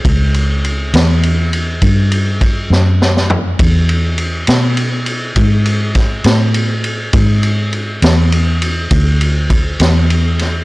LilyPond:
<<
  \new Staff \with { instrumentName = "Fingered electric bass" } { \clef bass \time 12/8 \key e \dorian \tempo 4. = 68 cis,4. e,4. g,4. fis,4. | e,4. b,4. gis,4. a,4. | gis,4. e,4. d,4. e,4. | }
  \new DrumStaff \with { instrumentName = "Drums" } \drummode { \time 12/8 <bd cymr>8 cymr8 cymr8 <cymr sn>8 cymr8 cymr8 <bd cymr>8 cymr8 <bd cymr>8 sn8 sn16 sn16 tomfh8 | <bd cymr>8 cymr8 cymr8 <cymr sn>8 cymr8 cymr8 <bd cymr>8 cymr8 <bd cymr sn>8 <cymr sn>8 cymr8 cymr8 | <bd cymr>8 cymr8 cymr8 <cymr sn>8 cymr8 cymr8 <bd cymr>8 cymr8 <bd cymr>8 <cymr sn>8 cymr8 <cymr sn>8 | }
>>